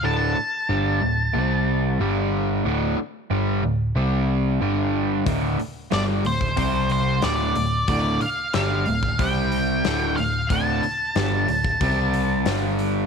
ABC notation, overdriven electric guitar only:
X:1
M:4/4
L:1/8
Q:1/4=92
K:Dm
V:1 name="Overdriven electric guitar" clef=bass
[D,,A,,D,] z [G,,D,G,] [D,,A,,] [C,G,C]2 [G,,D,G,]2 | [D,,A,,D,] z [G,,D,G,] [D,,A,,] [C,G,C]2 [G,,D,G,]2 | [D,,A,,D,] z [G,,D,G,] [D,,A,,] [C,G,C]2 [D,,A,,D,] [D,,A,,] | [D,,A,,D,] z [G,,D,G,] [D,,A,,] [C,G,C]2 [D,,A,,D,] [D,,A,,] |
[D,,A,,D,] z [G,,D,G,] [D,,A,,] [C,G,C]2 [G,,D,G,]2 |]